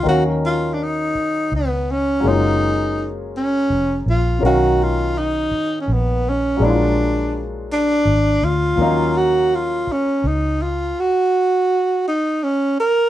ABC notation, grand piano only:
X:1
M:6/8
L:1/8
Q:3/8=55
K:D#m
V:1 name="Grand piano"
[D,F,CAe]6 | [F,G,A,CE]6 | [C,D,F,CAe]6 | [F,G,A,=D=E^E]6 |
[E,F,A,CDe]6 | z6 |]